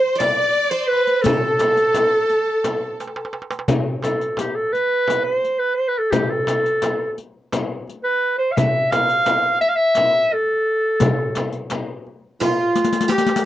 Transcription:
0.00 0.14 C5 medium
0.00 0.20 C5 medium
0.00 0.20 C5 loud
0.15 0.20 C5 medium
0.15 0.72 D5 loud
0.15 0.90 D5 loud
0.20 0.71 D5 medium
0.20 riq medium
0.20 darbuka tek medium
0.20 frame drum medium
0.57 darbuka ka soft
0.71 0.89 C5 loud
0.71 1.25 C5 medium
0.88 1.24 B4 medium
0.88 1.23 B4 medium
0.92 darbuka ka soft
1.07 riq soft
1.22 3.33 A4 loud
1.22 3.34 A4 medium
1.22 3.31 A4 medium
1.22 riq medium
1.22 darbuka dum medium
1.22 frame drum medium
1.59 riq soft
1.59 darbuka tek medium
1.59 frame drum medium
1.77 riq soft
1.94 riq soft
1.94 darbuka tek medium
1.94 frame drum medium
2.29 riq soft
2.64 riq soft
2.64 darbuka tek medium
2.64 frame drum medium
3.00 riq soft
3.00 darbuka tek medium
3.08 darbuka ka medium
3.16 darbuka tek medium
3.25 darbuka ka medium
3.33 darbuka tek medium
3.42 darbuka ka medium
3.51 riq soft
3.51 darbuka tek medium
3.59 darbuka ka medium
3.68 riq medium
3.68 darbuka dum medium
3.68 frame drum loud
4.02 4.41 A4 medium
4.02 riq soft
4.02 darbuka tek medium
4.02 frame drum medium
4.21 riq soft
4.37 4.57 G4 medium
4.37 riq medium
4.37 darbuka tek medium
4.37 frame drum medium
4.55 4.74 A4 medium
4.73 5.26 B4 loud
4.73 riq soft
4.73 darbuka ka soft
5.08 riq soft
5.08 darbuka tek medium
5.08 frame drum medium
5.24 5.61 C5 medium
5.43 riq soft
5.43 darbuka ka soft
5.59 5.76 B4 medium
5.75 5.90 C5 medium
5.88 6.00 B4 medium
5.98 6.12 A4 medium
6.11 6.31 G4 medium
6.11 riq medium
6.11 frame drum loud
6.11 darbuka dum medium
6.30 7.16 A4 medium
6.47 riq soft
6.47 darbuka tek medium
6.47 frame drum medium
6.66 riq soft
6.82 riq medium
6.82 darbuka tek medium
6.82 frame drum medium
7.18 riq soft
7.18 darbuka ka soft
7.52 riq medium
7.52 darbuka tek medium
7.52 frame drum medium
7.88 riq soft
7.88 darbuka ka soft
8.04 8.34 B4 medium
8.38 8.54 C5 medium
8.52 8.93 E5 loud
8.52 8.57 F5 medium
8.57 riq medium
8.57 frame drum medium
8.57 darbuka dum loud
8.91 9.60 F5 loud
8.91 riq soft
8.91 darbuka tek medium
8.91 frame drum medium
9.09 riq soft
9.26 riq soft
9.26 darbuka tek medium
9.26 frame drum medium
9.61 9.70 E5 loud
9.61 riq soft
9.61 darbuka ka soft
9.69 9.77 F5 medium
9.75 10.34 E5 loud
9.95 riq medium
9.95 darbuka tek medium
9.95 frame drum medium
10.32 11.70 A4 medium
10.32 darbuka ka soft
11.00 riq medium
11.00 darbuka dum medium
11.00 frame drum loud
11.35 riq soft
11.35 darbuka tek medium
11.35 frame drum medium
11.52 riq soft
11.52 darbuka ka soft
11.70 riq soft
11.70 darbuka tek medium
11.70 frame drum medium
12.07 darbuka ka soft
12.40 13.08 F4 medium
12.40 13.07 F4 medium
12.40 riq soft
12.40 darbuka tek medium
12.40 frame drum medium
12.75 riq medium
12.75 darbuka tek medium
12.84 riq medium
12.93 riq medium
12.93 darbuka ka medium
13.01 riq medium
13.08 13.44 G4 medium
13.08 13.45 G4 medium
13.08 riq medium
13.08 darbuka tek medium
13.18 riq medium
13.26 riq medium
13.26 darbuka ka medium
13.36 riq medium

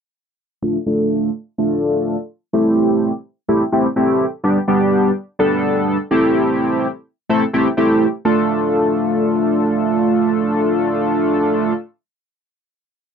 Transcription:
0.63 0.77 A3 medium
0.63 0.77 D4 medium
0.63 0.77 F4 medium
0.63 0.77 A4 medium
0.86 1.30 A3 medium
0.86 1.30 D4 medium
0.86 1.30 F4 medium
0.86 1.30 A4 loud
1.58 2.16 A3 medium
1.58 2.16 D4 medium
1.58 2.16 F4 medium
1.58 2.16 A4 medium
2.53 3.11 A3 medium
2.53 3.11 C4 medium
2.53 3.11 E4 medium
2.53 3.11 G4 medium
3.49 3.63 A3 medium
3.49 3.63 C4 medium
3.49 3.63 E4 medium
3.49 3.63 G4 medium
3.72 3.87 A3 medium
3.72 3.87 C4 medium
3.72 3.87 E4 medium
3.72 3.87 G4 medium
3.96 4.25 A3 medium
3.96 4.25 C4 medium
3.96 4.25 E4 medium
3.96 4.25 G4 loud
4.44 4.58 G3 medium
4.44 4.58 B3 medium
4.44 4.58 D4 medium
4.44 4.58 G4 medium
4.68 5.11 G3 medium
4.68 5.11 B3 medium
4.68 5.11 D4 medium
4.68 5.11 G4 loud
5.39 5.97 G3 medium
5.39 5.97 B3 medium
5.39 5.97 D4 medium
5.39 5.97 A4 loud
6.11 6.87 A3 medium
6.11 6.87 C4 medium
6.11 6.87 E4 medium
6.11 6.87 G4 medium
7.29 7.44 A3 medium
7.29 7.44 C4 medium
7.29 7.44 E4 medium
7.29 7.44 A4 medium
7.53 7.68 A3 medium
7.53 7.68 C4 medium
7.53 7.68 E4 medium
7.53 7.68 G4 loud
7.77 8.06 A3 medium
7.77 8.06 C4 medium
7.77 8.06 E4 medium
7.77 8.06 G4 loud
8.25 11.73 A3 medium
8.25 11.73 D4 medium
8.25 11.73 F4 medium
8.25 11.73 A4 medium

